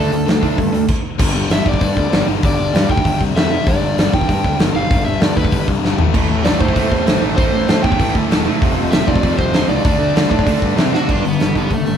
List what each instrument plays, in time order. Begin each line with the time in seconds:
Already playing: distorted electric guitar A3 D4, overdriven electric guitar A4
0.11 picked electric bass D2, distorted electric guitar D3 A3, open hi-hat
0.26 picked electric bass D2, distorted electric guitar D3 A3, snare, open hi-hat
0.41 picked electric bass D2, distorted electric guitar D3 A3 D4, kick, open hi-hat
0.57 picked electric bass G2, distorted electric guitar D3 A3, kick, open hi-hat
0.72 picked electric bass D2, distorted electric guitar D3 A3, open hi-hat
0.88 kick, crash
1.18 picked electric bass G1, distorted electric guitar G2 D3 G3, kick, crash
1.34 picked electric bass G1
1.49 picked electric bass G1, distorted electric guitar G2 D3 G3, snare, open hi-hat
1.53 overdriven electric guitar E5
1.65 picked electric bass G1, distorted electric guitar G2 D3 G3, overdriven electric guitar D5, kick
1.73 kick
1.80 distorted electric guitar G2 D3 G3, picked electric bass G2, kick, open hi-hat
1.97 picked electric bass D2, kick
2.10 picked electric bass G1, distorted electric guitar G2 D3 G3, snare, open hi-hat
2.26 picked electric bass G1, distorted electric guitar G2 D3 G3
2.42 picked electric bass G1, distorted electric guitar G2 D3 G3, overdriven electric guitar D5, kick, open hi-hat
2.59 picked electric bass G1
2.73 distorted electric guitar G2 D3 G3, picked electric bass G2, snare, open hi-hat
2.90 picked electric bass D2, distorted electric guitar G2 D3 G3, overdriven electric guitar G5, kick
2.97 kick
3.05 picked electric bass G1, distorted electric guitar G2 D3 G3, kick, open hi-hat
3.21 picked electric bass C2, kick
3.35 picked electric bass F2, distorted electric guitar G2 D3 G3, overdriven electric guitar E5, snare, open hi-hat
3.50 distorted electric guitar G2 D3 G3
3.67 picked electric bass G1, distorted electric guitar G2 D3 G3, overdriven electric guitar D5, kick, open hi-hat
3.82 picked electric bass G1
3.97 picked electric bass G1, distorted electric guitar G2 D3 G3, snare, open hi-hat
4.13 picked electric bass G1, distorted electric guitar G2 D3 G3, overdriven electric guitar G5, kick
4.21 kick
4.27 distorted electric guitar G2 D3 G3, picked electric bass G2, kick, open hi-hat
4.44 picked electric bass D2, kick
4.58 picked electric bass G1, distorted electric guitar G2 D3 G3, snare, open hi-hat
4.74 picked electric bass G1, distorted electric guitar G2 D3 G3, overdriven electric guitar F5
4.90 picked electric bass G1, distorted electric guitar G2 D3 G3, kick, open hi-hat
5.05 picked electric bass G1, overdriven electric guitar E5
5.21 picked electric bass G2, distorted electric guitar G2 D3 G3, overdriven electric guitar D5, snare, open hi-hat
5.36 picked electric bass D2, distorted electric guitar G2 D3 G3, overdriven electric guitar B4, kick
5.45 kick
5.52 picked electric bass G1, distorted electric guitar G2 D3 G3, kick, open hi-hat
5.68 picked electric bass C2, kick
5.83 picked electric bass G1, distorted electric guitar G2 D3 G3, snare
5.98 picked electric bass A1, distorted electric guitar A2 E3 A3, floor tom
6.14 picked electric bass A1, distorted electric guitar A2 E3 A3, kick, crash
6.29 picked electric bass A1
6.44 picked electric bass A1, distorted electric guitar A2 E3 A3, overdriven electric guitar D5, snare, open hi-hat
6.60 picked electric bass A1, distorted electric guitar A2 E3 A3, overdriven electric guitar C5, kick
6.68 kick
6.75 distorted electric guitar A2 E3 A3, picked electric bass A2, kick, open hi-hat
6.91 picked electric bass E2, kick
7.05 picked electric bass A1, distorted electric guitar A2 E3 A3, snare, open hi-hat
7.21 picked electric bass A1, distorted electric guitar A2 E3 A3
7.36 picked electric bass A1, distorted electric guitar A2 E3 A3, overdriven electric guitar C5, kick, open hi-hat
7.52 picked electric bass A1
7.68 distorted electric guitar A2 E3 A3, picked electric bass A2, snare, open hi-hat
7.83 picked electric bass E2, distorted electric guitar A2 E3 A3, overdriven electric guitar G5, kick
7.92 kick
8.00 picked electric bass A1, distorted electric guitar A2 E3 A3, kick, open hi-hat
8.15 picked electric bass D2, kick
8.30 picked electric bass E1, distorted electric guitar A2 E3 A3, snare, open hi-hat
8.45 distorted electric guitar A2 E3 A3
8.61 picked electric bass F1, distorted electric guitar F2 C3 F3, kick, open hi-hat
8.77 picked electric bass F1
8.91 picked electric bass F1, distorted electric guitar F2 C3 F3, overdriven electric guitar E5, snare, open hi-hat
9.06 picked electric bass F1, distorted electric guitar F2 C3 F3, overdriven electric guitar D5, kick
9.16 kick
9.22 distorted electric guitar F2 C3 F3, picked electric bass F2, kick, open hi-hat
9.38 picked electric bass C2, overdriven electric guitar C5, kick
9.53 picked electric bass F1, distorted electric guitar F2 C3 F3, snare, open hi-hat
9.68 picked electric bass C#2, distorted electric guitar F2 C3 F3, overdriven electric guitar D5
9.84 picked electric bass D2, distorted electric guitar D3 A3 D4, kick, open hi-hat
9.99 picked electric bass D2
10.15 distorted electric guitar D3 A3 D4, picked electric bass D3, snare, open hi-hat
10.30 picked electric bass A2, distorted electric guitar D3 A3 D4, kick
10.39 kick
10.46 picked electric bass D2, distorted electric guitar D3 A3 D4, kick, open hi-hat
10.62 picked electric bass G2, kick
10.76 picked electric bass C3, distorted electric guitar D3 A3 D4, snare, open hi-hat
10.93 distorted electric guitar D3 A3 D4, overdriven electric guitar F#4, snare
11.09 picked electric bass G1, distorted electric guitar G2 D3 G3, overdriven electric guitar D4, kick, crash
11.25 picked electric bass G1, distorted electric guitar G2 D3, overdriven electric guitar B3, open hi-hat
11.40 picked electric bass G1, distorted electric guitar G2 D3, snare, open hi-hat
11.55 picked electric bass G1, distorted electric guitar G2 D3 G3, overdriven electric guitar B3, kick, open hi-hat
11.70 picked electric bass C2, distorted electric guitar G2 D3, overdriven electric guitar A3, kick, open hi-hat
11.86 picked electric bass G1, distorted electric guitar G2 D3, open hi-hat